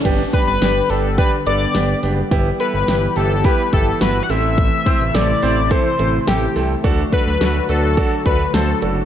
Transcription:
0.05 0.25 G1 loud
0.05 2.29 D3 medium
0.05 4.26 G3 medium
0.05 0.20 B3 loud
0.05 4.26 B3 medium
0.05 0.21 D4 loud
0.05 0.20 G4 loud
0.05 2.29 G4 medium
0.05 kick loud
0.05 closed hi-hat medium
0.05 crash medium
0.33 0.49 B3 medium
0.33 0.49 D4 medium
0.33 0.49 G4 medium
0.33 0.46 B4 medium
0.33 kick medium
0.33 closed hi-hat medium
0.47 0.57 G1 medium
0.47 0.91 B4 medium
0.62 0.81 G1 loud
0.62 0.77 B3 medium
0.62 0.77 D4 medium
0.62 0.77 G4 medium
0.62 snare loud
0.62 closed hi-hat medium
0.90 1.20 G1 medium
0.90 1.05 B3 medium
0.90 1.05 D4 medium
0.90 1.05 G4 medium
0.90 1.18 A4 medium
0.90 open hi-hat medium
1.18 1.34 B3 loud
1.18 1.34 D4 medium
1.18 1.34 G4 loud
1.18 1.31 B4 loud
1.18 kick loud
1.18 closed hi-hat medium
1.46 1.66 G1 loud
1.46 1.62 B3 medium
1.46 1.62 D4 medium
1.46 1.62 A4 medium
1.46 1.99 D5 loud
1.46 closed hi-hat medium
1.75 1.95 G1 loud
1.75 1.90 B3 medium
1.75 1.90 D4 medium
1.75 1.90 G4 medium
1.75 snare loud
1.75 closed hi-hat medium
2.03 2.23 F#1 medium
2.03 2.19 B3 medium
2.03 2.19 D4 medium
2.03 2.19 G4 medium
2.03 open hi-hat medium
2.31 2.51 G1 loud
2.31 6.80 E3 medium
2.31 2.47 B3 loud
2.31 2.47 E4 loud
2.31 2.47 G4 loud
2.31 4.28 G4 medium
2.31 kick loud
2.31 closed hi-hat medium
2.60 2.75 B3 medium
2.60 2.75 E4 medium
2.60 2.75 A4 medium
2.60 2.73 B4 medium
2.60 closed hi-hat medium
2.74 2.84 G1 loud
2.74 3.14 B4 loud
2.88 3.08 G1 loud
2.88 3.04 B3 medium
2.88 3.04 E4 medium
2.88 3.04 G4 medium
2.88 snare loud
2.88 closed hi-hat medium
3.16 3.46 G1 loud
3.16 3.32 B3 medium
3.16 3.32 E4 medium
3.16 3.32 G4 medium
3.16 3.46 A4 medium
3.16 open hi-hat medium
3.44 3.60 B3 loud
3.44 3.60 E4 medium
3.44 3.60 G4 loud
3.44 3.73 B4 loud
3.44 kick loud
3.44 closed hi-hat medium
3.73 3.93 G1 loud
3.73 3.88 B3 medium
3.73 3.88 E4 medium
3.73 3.88 G4 medium
3.73 3.99 A4 loud
3.73 kick medium
3.73 closed hi-hat medium
4.01 4.21 G1 loud
4.01 4.17 B3 medium
4.01 4.17 E4 medium
4.01 4.17 F#4 medium
4.01 4.24 B4 loud
4.01 snare loud
4.01 closed hi-hat medium
4.23 4.32 F#5 medium
4.29 4.69 A1 loud
4.29 6.82 C3 medium
4.29 9.05 A3 medium
4.29 4.75 C4 medium
4.29 6.82 E4 medium
4.29 4.75 E4 medium
4.29 4.75 A4 medium
4.29 5.16 E5 loud
4.29 open hi-hat medium
4.58 kick loud
4.58 closed hi-hat medium
4.86 5.02 C4 medium
4.86 5.02 E4 medium
4.86 5.02 C5 medium
4.86 kick medium
4.86 closed hi-hat medium
5.00 5.10 A1 loud
5.14 5.34 A1 loud
5.14 5.30 C4 medium
5.14 5.30 E4 medium
5.14 5.30 A4 medium
5.14 5.73 D5 loud
5.14 snare loud
5.14 closed hi-hat medium
5.42 5.73 A1 loud
5.42 5.58 C4 medium
5.42 5.58 E4 medium
5.42 5.58 C5 medium
5.42 open hi-hat medium
5.71 5.86 C4 loud
5.71 5.86 E4 medium
5.71 5.86 A4 loud
5.71 6.27 C5 loud
5.71 kick loud
5.71 closed hi-hat medium
5.99 6.19 A1 loud
5.99 6.15 C4 medium
5.99 6.15 E4 medium
5.99 6.15 A4 medium
5.99 closed hi-hat medium
6.27 6.48 A1 loud
6.27 6.43 C4 medium
6.27 6.43 E4 medium
6.27 6.67 G4 medium
6.27 6.43 A4 medium
6.27 snare loud
6.27 closed hi-hat medium
6.56 6.76 C2 medium
6.56 6.71 C4 medium
6.56 6.71 E4 medium
6.56 6.71 A4 medium
6.56 open hi-hat medium
6.84 7.04 D2 loud
6.84 9.05 D3 medium
6.84 9.05 F#3 medium
6.84 7.00 D4 loud
6.84 7.00 F#4 loud
6.84 9.05 F#4 medium
6.84 7.00 A4 loud
6.84 kick loud
6.84 closed hi-hat medium
7.12 7.28 D4 medium
7.12 7.28 F#4 medium
7.12 7.28 A4 medium
7.12 7.26 B4 loud
7.12 kick medium
7.12 closed hi-hat medium
7.27 7.37 D2 loud
7.27 7.66 B4 loud
7.41 7.61 D2 loud
7.41 7.56 D4 medium
7.41 7.56 F#4 medium
7.41 7.56 A4 medium
7.41 snare loud
7.41 closed hi-hat medium
7.69 7.99 D2 loud
7.69 7.85 D4 medium
7.69 7.85 F#4 medium
7.69 8.22 A4 loud
7.69 7.85 B4 medium
7.69 open hi-hat medium
7.97 8.13 D4 loud
7.97 8.13 F#4 medium
7.97 8.13 A4 loud
7.97 kick loud
7.97 closed hi-hat medium
8.26 8.46 D2 loud
8.26 8.41 D4 medium
8.26 8.41 F#4 medium
8.26 8.41 A4 medium
8.26 8.52 B4 loud
8.26 kick medium
8.26 closed hi-hat medium
8.54 8.74 D2 loud
8.54 8.69 D4 medium
8.54 8.69 F#4 medium
8.54 8.94 A4 medium
8.54 8.69 C5 medium
8.54 snare loud
8.54 closed hi-hat medium
8.82 9.02 F#1 medium
8.82 8.98 D4 medium
8.82 8.98 F#4 medium
8.82 8.98 A4 medium
8.82 closed hi-hat medium

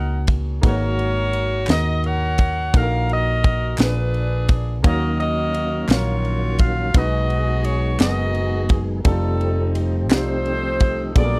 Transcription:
0.00 0.59 C#2 loud
0.00 0.61 A#3 medium
0.00 0.62 D#4 medium
0.00 0.64 F#4 medium
0.00 0.64 G#4 medium
0.00 0.25 A#4 medium
0.00 0.65 C#5 medium
0.00 0.25 D#5 medium
0.00 0.30 F#5 loud
0.27 kick loud
0.27 ride medium
0.61 1.64 G#1 loud
0.61 1.65 G#2 medium
0.61 1.56 A#3 medium
0.61 1.56 D#4 medium
0.61 1.57 F#4 medium
0.61 1.65 F#4 medium
0.61 1.57 G#4 medium
0.61 0.71 B4 medium
0.61 kick loud
0.61 ride medium
0.66 1.66 A#4 medium
0.66 1.66 C#5 loud
0.71 1.61 C#5 medium
0.99 ride soft
1.33 ride medium
1.67 2.70 D#2 medium
1.67 2.62 A#3 medium
1.67 2.62 D#4 medium
1.67 2.62 F#4 medium
1.67 2.63 G#4 medium
1.67 2.63 A#4 medium
1.67 2.05 D#5 loud
1.67 snare loud
1.67 clap loud
1.67 ride medium
2.04 2.70 A#4 medium
2.04 2.71 C#5 medium
2.04 2.75 F#5 loud
2.04 ride soft
2.38 kick loud
2.38 ride medium
2.73 3.75 A#1 loud
2.73 3.75 A#2 medium
2.73 3.67 D#4 medium
2.73 3.68 F#4 medium
2.73 2.81 A4 medium
2.73 3.10 A#4 medium
2.73 3.10 F5 loud
2.73 kick loud
2.73 ride medium
2.83 3.72 A#4 medium
3.09 3.76 F#4 medium
3.09 3.76 A#4 medium
3.09 3.76 D#5 loud
3.09 ride soft
3.44 kick loud
3.44 ride medium
3.77 4.84 A#1 loud
3.77 4.80 A#2 medium
3.77 4.72 A#3 medium
3.77 4.72 D4 medium
3.77 4.81 D4 medium
3.77 4.72 F4 medium
3.77 4.73 G#4 medium
3.77 4.81 G#4 medium
3.77 4.73 B4 medium
3.77 snare loud
3.77 clap loud
3.77 ride medium
3.81 4.59 B4 medium
4.14 ride soft
4.49 kick loud
4.49 ride medium
4.83 5.85 D#2 loud
4.83 6.90 D#3 medium
4.83 5.85 D#3 medium
4.83 6.91 F#3 medium
4.83 5.77 A#3 medium
4.83 6.91 A#3 medium
4.83 6.91 C#4 medium
4.83 5.77 D#4 medium
4.83 4.91 D#4 medium
4.83 5.78 F#4 medium
4.83 5.79 C#5 medium
4.83 5.18 D#5 loud
4.83 5.78 F5 medium
4.83 kick loud
4.83 ride medium
4.87 5.19 F#4 medium
4.87 5.19 A#4 medium
4.87 6.94 F5 medium
5.20 5.91 F#4 medium
5.20 6.21 A#4 medium
5.20 5.86 D#5 loud
5.20 ride soft
5.54 ride medium
5.88 6.90 A#1 medium
5.88 6.84 F#3 medium
5.88 6.82 A#3 medium
5.88 6.83 D#4 medium
5.88 6.92 F4 medium
5.88 6.84 C#5 medium
5.88 6.61 C#5 medium
5.88 6.84 F5 medium
5.88 snare loud
5.88 clap loud
5.88 ride medium
5.92 6.92 F#4 medium
6.25 ride soft
6.59 6.95 F5 loud
6.59 kick medium
6.59 ride medium
6.94 7.96 B1 loud
6.94 7.96 B2 medium
6.94 9.01 F#3 medium
6.94 9.01 G#3 medium
6.94 7.88 G#3 medium
6.94 9.01 B3 medium
6.94 7.89 B3 medium
6.94 9.01 D#4 medium
6.94 7.89 D#4 medium
6.94 7.96 F#4 medium
6.94 7.89 F#4 medium
6.94 9.01 G#4 medium
6.94 7.96 G#4 medium
6.94 7.90 B4 medium
6.94 7.65 D#5 loud
6.94 kick loud
6.94 ride medium
7.30 ride soft
7.64 8.00 C#5 loud
7.64 ride medium
7.99 9.01 F#1 medium
7.99 8.93 G#3 medium
7.99 8.93 B3 medium
7.99 8.94 D#4 medium
7.99 8.94 F#4 medium
7.99 8.89 F#4 medium
7.99 8.89 G#4 medium
7.99 8.07 G#4 medium
7.99 8.75 D#5 loud
7.99 snare loud
7.99 clap loud
7.99 ride medium
8.09 8.98 A#4 medium
8.35 ride soft
8.69 kick loud
8.69 ride medium
9.04 10.10 F1 loud
9.04 11.12 F3 medium
9.04 9.98 G3 medium
9.04 11.12 A3 medium
9.04 9.99 C4 medium
9.04 11.12 C4 medium
9.04 10.07 C4 medium
9.04 9.99 D#4 medium
9.04 11.12 D#4 medium
9.04 10.07 D#4 medium
9.04 9.99 F4 medium
9.04 11.12 G4 medium
9.04 9.72 A4 medium
9.04 10.00 A4 medium
9.04 kick loud
9.04 ride medium
9.41 ride soft
9.75 ride medium
10.09 11.12 C2 loud
10.09 11.04 G3 medium
10.09 11.04 C4 medium
10.09 11.05 D#4 medium
10.09 11.04 F4 medium
10.09 11.05 G4 medium
10.09 11.13 A4 medium
10.09 11.13 C5 loud
10.09 snare loud
10.09 clap loud
10.09 ride medium
10.13 11.13 D#4 medium
10.46 ride soft
10.80 kick loud
10.80 ride medium
11.15 11.39 A#1 loud
11.15 11.39 A#2 medium
11.15 11.39 F#3 medium
11.15 11.39 G#3 medium
11.15 11.39 B3 medium
11.15 11.39 D4 medium
11.15 11.39 F4 medium
11.15 11.39 G#4 medium
11.15 11.23 A4 medium
11.15 11.39 D5 loud
11.15 kick loud
11.15 ride medium
11.24 11.39 A#4 medium

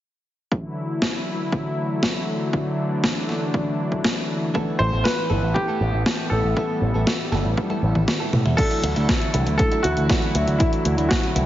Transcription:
0.52 4.51 D3 medium
0.52 8.54 E3 medium
0.52 4.51 F#3 medium
0.52 4.51 A3 medium
0.52 2.51 E4 medium
0.52 kick loud
1.02 kick loud
1.02 snare loud
1.52 kick loud
2.03 kick loud
2.03 snare loud
2.53 4.53 D4 medium
2.53 kick loud
3.04 kick loud
3.04 snare loud
3.29 snare soft
3.54 kick loud
3.92 kick medium
4.04 kick loud
4.04 snare loud
4.54 4.90 A3 medium
4.54 6.55 A3 medium
4.54 8.54 B3 medium
4.54 4.90 B3 medium
4.54 4.90 E4 medium
4.54 4.90 A4 medium
4.54 kick loud
4.79 4.90 A1 medium
4.79 5.06 C5 loud
4.92 5.02 A1 medium
4.92 5.10 A3 medium
4.92 5.10 B3 medium
4.92 5.10 E4 medium
4.92 5.10 A4 medium
5.04 5.57 B4 loud
5.04 kick loud
5.04 snare loud
5.30 5.40 G1 medium
5.30 5.65 A3 medium
5.30 5.65 B3 medium
5.30 5.65 E4 medium
5.30 5.65 A4 medium
5.43 5.52 A1 medium
5.54 6.33 G4 medium
5.54 kick loud
5.68 6.03 A3 medium
5.68 6.03 B3 medium
5.68 6.03 E4 medium
5.68 6.03 A4 medium
5.81 5.90 A1 medium
5.93 6.03 A1 medium
6.06 6.54 A3 medium
6.06 6.54 B3 medium
6.06 6.54 E4 medium
6.06 6.54 A4 medium
6.06 kick loud
6.06 snare loud
6.30 6.41 A1 medium
6.30 8.03 A4 medium
6.44 6.53 A1 medium
6.56 8.56 G3 medium
6.56 6.91 A3 medium
6.56 6.92 B3 medium
6.56 6.92 E4 medium
6.56 6.92 A4 medium
6.56 kick loud
6.82 6.91 A1 medium
6.94 7.04 A1 medium
6.94 7.12 A3 medium
6.94 7.12 B3 medium
6.94 7.12 E4 medium
6.94 7.12 A4 medium
7.07 kick loud
7.07 snare loud
7.32 7.42 G1 medium
7.32 7.67 A3 medium
7.32 7.67 B3 medium
7.32 7.67 E4 medium
7.32 7.67 A4 medium
7.32 snare soft
7.45 7.54 A1 medium
7.57 kick loud
7.57 high tom medium
7.70 8.05 A3 medium
7.70 8.05 B3 medium
7.70 8.05 E4 medium
7.70 8.05 A4 loud
7.70 high tom medium
7.82 7.92 A1 medium
7.95 8.05 A1 medium
7.95 kick medium
7.95 mid tom medium
8.08 kick loud
8.08 snare loud
8.08 mid tom medium
8.20 8.55 A3 medium
8.20 8.55 B3 medium
8.20 8.55 E4 medium
8.20 8.55 A4 medium
8.33 8.43 A2 medium
8.33 mid tom medium
8.46 8.55 E2 medium
8.46 mid tom medium
8.57 11.46 D3 medium
8.57 11.46 E3 medium
8.57 11.46 F#3 medium
8.57 8.93 A3 medium
8.57 11.46 A3 medium
8.57 8.93 D4 medium
8.57 11.46 E4 medium
8.57 8.93 E4 medium
8.57 8.93 F#4 medium
8.57 9.55 A4 loud
8.57 kick loud
8.57 closed hi-hat medium
8.57 crash medium
8.71 closed hi-hat soft
8.83 8.93 D2 medium
8.83 closed hi-hat medium
8.96 9.06 D2 medium
8.96 9.14 A3 medium
8.96 9.14 D4 medium
8.96 9.14 E4 medium
8.96 9.14 F#4 medium
8.96 closed hi-hat soft
9.09 kick loud
9.09 snare loud
9.09 closed hi-hat medium
9.22 closed hi-hat soft
9.33 9.44 C2 medium
9.33 9.69 A3 medium
9.33 9.69 D4 medium
9.33 9.69 E4 medium
9.33 9.69 F#4 medium
9.33 closed hi-hat medium
9.47 9.56 D2 medium
9.47 closed hi-hat soft
9.58 9.84 A4 loud
9.58 kick loud
9.58 closed hi-hat medium
9.71 10.07 A3 medium
9.71 10.07 D4 medium
9.71 10.07 E4 medium
9.71 10.07 F#4 loud
9.71 closed hi-hat soft
9.83 9.94 D2 medium
9.83 10.55 F#4 loud
9.83 closed hi-hat medium
9.97 10.07 D2 medium
9.97 closed hi-hat soft
10.09 10.57 A3 medium
10.09 10.57 D4 medium
10.09 10.57 E4 medium
10.09 10.57 F#4 medium
10.09 kick loud
10.09 snare loud
10.09 closed hi-hat medium
10.22 closed hi-hat soft
10.35 10.44 D2 medium
10.35 closed hi-hat medium
10.47 10.57 D2 medium
10.47 closed hi-hat soft
10.59 10.95 A3 medium
10.59 10.95 D4 medium
10.59 11.06 E4 medium
10.59 10.95 E4 medium
10.59 10.95 F#4 medium
10.59 kick loud
10.59 closed hi-hat medium
10.73 closed hi-hat soft
10.85 10.95 D2 medium
10.85 closed hi-hat medium
10.98 11.07 D2 medium
10.98 11.16 A3 medium
10.98 11.16 D4 medium
10.98 11.16 E4 medium
10.98 11.16 F#4 medium
10.98 closed hi-hat soft
11.09 11.46 F#4 medium
11.09 kick loud
11.09 snare loud
11.09 closed hi-hat medium
11.23 closed hi-hat soft
11.35 11.45 C2 medium
11.35 11.46 A3 medium
11.35 11.46 D4 medium
11.35 11.46 E4 medium
11.35 11.46 F#4 medium
11.35 closed hi-hat medium

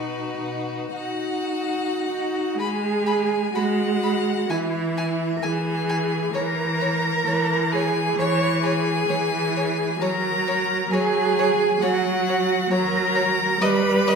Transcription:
0.00 0.21 B2 soft
0.00 0.92 D#4 soft
0.00 0.92 F#4 soft
0.00 0.93 B4 medium
0.35 0.93 B2 soft
0.93 2.05 D#4 soft
0.93 2.59 F#4 medium
0.93 2.06 F#4 soft
0.93 2.54 F#5 medium
2.08 2.57 D#4 soft
2.08 2.59 F#4 soft
2.58 3.43 G#3 medium
2.58 3.53 G#4 medium
2.58 3.56 G#5 medium
2.58 2.67 B5 medium
3.07 3.15 B5 medium
3.53 4.38 G#3 medium
3.53 4.51 F#4 medium
3.53 4.51 F#5 medium
3.53 3.63 B5 medium
4.03 4.11 B5 soft
4.49 5.32 E3 medium
4.49 5.38 E4 medium
4.49 5.45 E5 medium
4.49 4.58 G#5 medium
4.98 5.06 G#5 medium
5.36 5.44 A#4 medium
5.42 6.24 E3 medium
5.42 6.33 G#4 medium
5.42 5.51 G#5 medium
5.42 6.35 G#5 medium
5.89 5.97 G#5 medium
6.33 7.14 E3 medium
6.33 7.74 A#4 loud
6.33 6.43 C#5 medium
6.33 7.73 A#5 medium
6.81 6.89 C#5 medium
7.26 8.08 E3 medium
7.26 7.35 C#5 medium
7.72 8.21 G#4 medium
7.72 7.83 C#5 medium
7.72 8.18 G#5 medium
8.16 8.97 E3 medium
8.16 8.63 C#5 loud
8.16 8.65 C#6 medium
8.20 8.28 C#5 medium
8.63 9.98 G#4 medium
8.63 8.73 C#5 medium
8.63 10.03 G#5 medium
9.08 9.89 E3 medium
9.08 9.17 C#5 medium
9.57 9.65 C#5 medium
10.00 10.80 F#3 medium
10.00 10.93 A#4 loud
10.00 10.10 C#5 medium
10.00 10.93 A#5 medium
10.48 10.56 C#5 medium
10.90 11.70 F#3 medium
10.90 11.85 G#4 loud
10.90 11.01 C#5 medium
10.90 11.82 G#5 medium
11.39 11.47 C#5 medium
11.80 12.61 F#3 medium
11.80 12.74 F#4 medium
11.80 11.90 C#5 medium
11.80 12.72 F#5 medium
12.29 12.37 C#5 medium
12.70 13.50 F#3 medium
12.70 13.63 A#4 loud
12.70 12.79 C#5 medium
12.70 13.63 A#5 medium
13.15 13.23 C#5 medium
13.60 14.15 G3 medium
13.60 14.15 B4 loud
13.60 13.70 D#5 medium
13.60 14.15 B5 loud
14.07 14.15 D#5 medium

